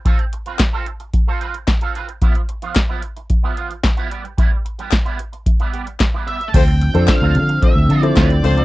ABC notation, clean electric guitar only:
X:1
M:4/4
L:1/16
Q:1/4=111
K:Ddor
V:1 name="Clean electric guitar"
[CFA] z2 [CFB] z [CFA] z3 [CFA] [CFB] z2 [CFA] [CFB] z | [F,B,E] z2 [F,B,F] z [F,B,E] z3 [F,B,E] [F,B,F] z2 [F,B,E] [G,B,G] z | [G,B,E] z2 [G,B,G] z [G,B,E] z3 [G,B,E] [G,B,G] z2 [G,B,E] [G,B,G] z | [CFA] z2 [CFA] z [CFA] z4 [CFA] z [CFB] z2 [CFA] |]